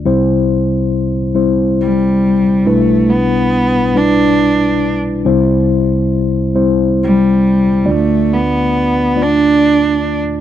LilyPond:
<<
  \new Staff \with { instrumentName = "Tine electric piano" } { \time 6/8 \key c \major \tempo 4. = 46 <g c' e' c''>4 r8 <g c' e' c''>4 r8 | <g d' e' b'>4 r8 <g d' e' b'>4 r8 | <g c' e' c''>4 r8 <g c' e' c''>4 r8 | <a d' f' d''>4 r8 <a d' f' d''>4 r8 | }
  \new Staff \with { instrumentName = "Tine electric piano" } { \clef bass \time 6/8 \key c \major <c, c>2. | <b,, b,>2. | <c, c>2. | <d, d>2. | }
  \new Staff \with { instrumentName = "Cello" } { \time 6/8 \key c \major r2 g4 | a8 b4 d'4 r8 | r2 g4 | a8 b4 d'4 r8 | }
>>